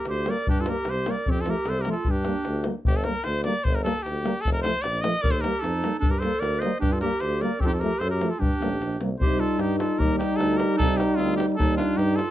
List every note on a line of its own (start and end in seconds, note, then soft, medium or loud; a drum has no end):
0.05 0.28 D2 medium
0.05 0.30 G4 medium
0.05 davul high medium
0.09 0.31 C5 medium
0.26 0.34 G3 soft
0.26 0.36 A#3 medium
0.26 0.47 A#4 medium
0.26 davul high medium
0.30 0.48 D5 medium
0.47 0.69 G2 medium
0.47 0.63 D4 medium
0.47 0.62 G4 medium
0.47 davul low medium
0.57 0.71 F4 medium
0.57 0.70 A4 medium
0.57 davul high soft
0.66 0.74 G3 soft
0.66 0.76 A#3 soft
0.66 0.87 G4 medium
0.66 0.91 A#4 medium
0.66 davul high medium
0.78 davul high soft
0.85 1.08 C2 medium
0.85 1.09 G4 medium
0.85 davul high medium
0.90 1.12 C5 medium
1.06 1.15 G3 soft
1.06 1.15 A#3 medium
1.06 1.30 A#4 medium
1.06 davul high medium
1.11 1.32 D5 medium
1.26 1.49 F2 medium
1.26 1.42 C4 medium
1.26 davul low medium
1.31 1.42 G4 medium
1.37 1.50 F4 medium
1.37 1.51 A4 medium
1.37 davul high soft
1.46 1.54 F3 medium
1.46 1.55 A3 medium
1.46 1.69 G4 medium
1.46 1.71 A#4 medium
1.46 davul high medium
1.57 davul high soft
1.66 1.88 C2 medium
1.66 1.81 A4 medium
1.66 1.83 C5 medium
1.66 davul high medium
1.80 1.87 G4 medium
1.80 1.88 A#4 medium
1.85 1.94 F3 medium
1.85 1.94 A3 medium
1.85 davul high medium
1.89 2.11 F4 medium
1.89 2.12 A4 medium
2.05 2.29 G2 medium
2.05 davul low medium
2.09 2.67 D4 medium
2.09 2.68 G4 medium
2.25 2.34 G3 soft
2.25 2.34 A#3 medium
2.25 davul high medium
2.36 davul high soft
2.45 2.68 D2 medium
2.45 davul high medium
2.55 davul high soft
2.64 2.73 G3 soft
2.64 2.73 A#3 soft
2.64 davul high medium
2.85 3.08 G1 medium
2.85 2.98 G4 medium
2.85 davul low medium
2.95 3.06 A4 medium
2.95 davul high soft
3.04 3.15 G3 soft
3.04 3.13 A#3 soft
3.04 3.26 A#4 medium
3.04 davul high medium
3.15 davul high soft
3.24 3.48 D2 medium
3.24 3.43 C5 medium
3.24 davul high medium
3.44 3.54 G3 medium
3.44 3.53 A#3 medium
3.44 3.66 D5 medium
3.44 davul high medium
3.64 3.87 G1 medium
3.64 3.76 C5 medium
3.64 davul low medium
3.75 3.83 A#4 medium
3.75 davul high soft
3.84 3.92 G3 medium
3.84 3.94 A#3 medium
3.84 4.04 A4 medium
3.84 davul high medium
3.97 davul high soft
4.02 4.28 D2 medium
4.02 4.43 G4 medium
4.02 davul high medium
4.24 4.33 G3 medium
4.24 4.32 A#3 medium
4.24 davul high medium
4.41 4.67 F1 medium
4.41 4.52 A4 loud
4.45 davul low medium
4.52 4.61 A#4 medium
4.62 4.73 F3 soft
4.62 4.72 A3 medium
4.62 4.83 C5 loud
4.62 davul high medium
4.75 davul high soft
4.82 5.07 A#1 medium
4.82 5.03 D5 loud
4.82 davul high medium
5.01 5.11 A3 medium
5.01 5.23 D#5 medium
5.01 davul high medium
5.06 5.13 F3 medium
5.22 5.46 D#2 medium
5.22 5.34 A#4 medium
5.22 5.32 D5 loud
5.22 davul low medium
5.31 5.42 A4 medium
5.31 5.42 C5 medium
5.41 5.51 A#3 medium
5.41 5.63 G4 medium
5.41 5.61 A#4 medium
5.41 davul high medium
5.45 5.52 G3 soft
5.59 5.85 F2 medium
5.59 5.99 D#4 medium
5.59 5.98 A4 medium
5.64 davul high medium
5.84 5.92 G3 soft
5.84 5.92 A#3 soft
5.84 davul high medium
5.95 davul high soft
5.99 6.24 G2 medium
5.99 6.12 D4 medium
5.99 6.12 A4 medium
5.99 davul low medium
6.10 6.22 G4 medium
6.10 6.20 A#4 medium
6.10 davul high soft
6.19 6.31 G3 soft
6.19 6.42 A4 medium
6.19 6.41 C5 medium
6.19 davul high medium
6.25 6.32 A#3 medium
6.35 davul high soft
6.40 6.64 D2 medium
6.40 6.60 A#4 medium
6.40 6.62 D5 medium
6.40 davul high medium
6.59 6.79 C5 medium
6.59 6.80 D#5 medium
6.59 davul high medium
6.63 6.71 G3 medium
6.63 6.71 A#3 medium
6.79 7.04 G2 medium
6.79 6.93 D4 medium
6.79 6.94 G4 medium
6.79 davul low medium
6.92 7.00 F4 medium
6.92 7.00 A4 medium
6.92 davul high soft
7.01 7.10 G3 medium
7.01 7.11 A#3 medium
7.01 7.22 G4 medium
7.01 7.22 A#4 medium
7.01 davul high medium
7.12 davul high soft
7.20 7.44 D2 medium
7.20 7.43 G4 medium
7.20 7.43 C5 medium
7.20 davul high medium
7.41 7.50 G3 medium
7.41 7.51 A#3 medium
7.41 7.61 A#4 medium
7.41 7.62 D5 medium
7.41 davul high medium
7.60 7.84 F2 medium
7.60 7.67 C4 medium
7.60 7.65 G4 medium
7.60 davul low medium
7.64 7.72 D#4 medium
7.64 7.68 F4 medium
7.64 7.72 G4 loud
7.64 7.67 A4 medium
7.72 7.81 F4 soft
7.72 7.81 A4 medium
7.72 davul high soft
7.79 8.02 G4 medium
7.79 8.00 A#4 medium
7.79 davul high soft
7.83 7.91 F3 medium
7.83 7.91 A3 medium
7.92 davul high soft
7.99 8.23 F#2 medium
7.99 8.11 A4 medium
7.99 8.10 C5 medium
7.99 davul high medium
8.10 8.32 G4 medium
8.10 8.31 A#4 medium
8.21 8.30 F3 medium
8.21 8.30 A3 medium
8.21 davul high medium
8.30 8.41 F4 medium
8.30 8.41 A4 medium
8.39 8.51 G2 medium
8.39 9.00 D4 medium
8.39 9.00 G4 medium
8.39 davul low medium
8.53 davul high soft
8.60 8.79 A1 medium
8.60 8.70 G3 soft
8.60 8.69 A#3 medium
8.60 davul high medium
8.73 davul high soft
8.80 8.99 A#1 medium
8.80 davul high medium
8.92 davul high soft
9.00 9.18 C2 medium
9.00 9.10 G3 soft
9.00 9.09 A#3 medium
9.00 davul high medium
9.19 9.42 C2 medium
9.19 9.97 G3 medium
9.19 9.96 D#4 medium
9.19 9.41 G4 medium
9.19 9.42 C5 medium
9.19 davul low medium
9.32 davul high soft
9.40 9.61 F4 medium
9.40 9.62 A4 medium
9.59 9.81 G2 medium
9.59 9.78 D#4 medium
9.59 9.78 G4 medium
9.59 davul high medium
9.71 davul high soft
9.79 10.01 F4 medium
9.79 10.00 A4 medium
9.79 davul high medium
9.92 davul high soft
9.98 10.21 D#2 medium
9.98 10.79 G3 medium
9.98 10.78 D#4 medium
9.98 10.18 G4 medium
9.98 10.18 A#4 medium
9.98 davul low medium
10.11 davul high soft
10.19 10.37 D#4 medium
10.19 10.38 G4 medium
10.19 davul high medium
10.36 10.62 D2 medium
10.36 10.59 D#4 medium
10.36 10.59 A4 medium
10.41 davul high medium
10.51 davul high soft
10.57 10.76 G4 medium
10.57 10.77 A#4 medium
10.57 davul high medium
10.71 davul high soft
10.76 11.02 C2 medium
10.76 11.57 G3 medium
10.76 10.97 D#4 loud
10.76 10.98 A4 loud
10.76 davul low medium
10.80 11.58 D#4 medium
10.97 11.19 D#4 medium
10.97 11.18 G4 medium
10.97 davul high medium
11.16 11.41 D2 medium
11.16 11.36 C4 medium
11.16 11.36 F4 medium
11.16 davul high medium
11.31 davul high soft
11.36 11.46 D#4 medium
11.36 11.46 G4 medium
11.36 davul high medium
11.52 davul high soft
11.56 11.80 D#2 medium
11.56 12.22 G3 medium
11.56 11.76 D#4 medium
11.56 12.22 D#4 medium
11.56 11.76 A4 loud
11.56 davul low medium
11.77 12.00 D4 medium
11.77 11.98 F4 medium
11.77 davul high medium
11.97 12.20 G2 medium
11.97 12.19 D#4 medium
11.97 12.17 G4 medium
11.97 davul high medium
12.10 davul high soft
12.16 12.31 F4 medium
12.16 12.31 A4 medium
12.16 davul high medium